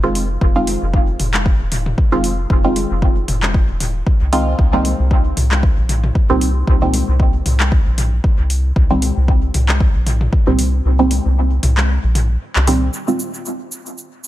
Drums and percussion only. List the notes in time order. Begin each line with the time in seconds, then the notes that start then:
0.15 open hi-hat
0.41 kick
0.67 open hi-hat, high conga
0.94 kick
1.20 mid tom, open hi-hat
1.34 clap, high conga
1.46 kick
1.72 mid tom, open hi-hat
1.86 mid tom
1.98 kick
2.24 open hi-hat
2.50 kick
2.76 open hi-hat, high conga
3.02 kick
3.28 mid tom, open hi-hat
3.43 clap, high conga
3.54 kick
3.80 mid tom, open hi-hat
4.07 kick
4.33 open hi-hat
4.59 kick
4.85 open hi-hat, high conga
5.11 kick
5.37 mid tom, open hi-hat
5.51 clap, high conga
5.63 kick
5.89 mid tom, open hi-hat
6.04 mid tom
6.15 kick
6.41 open hi-hat
6.67 kick
6.94 open hi-hat, high conga
7.20 kick
7.46 mid tom, open hi-hat
7.60 clap, high conga
7.72 kick
7.98 mid tom, open hi-hat
8.24 kick
8.50 open hi-hat
8.76 kick
9.02 open hi-hat, high conga
9.28 kick
9.54 mid tom, open hi-hat
9.69 clap, high conga
9.80 kick
10.07 mid tom, open hi-hat
10.21 mid tom
10.33 kick
10.59 open hi-hat
11.11 open hi-hat, high conga
11.63 mid tom, open hi-hat
11.77 clap, high conga
12.15 mid tom, open hi-hat
12.56 clap
12.67 open hi-hat
12.93 cabasa
13.08 cabasa
13.20 cabasa
13.34 cabasa
13.46 cabasa
13.72 cabasa
13.86 cabasa
13.98 cabasa
14.24 cabasa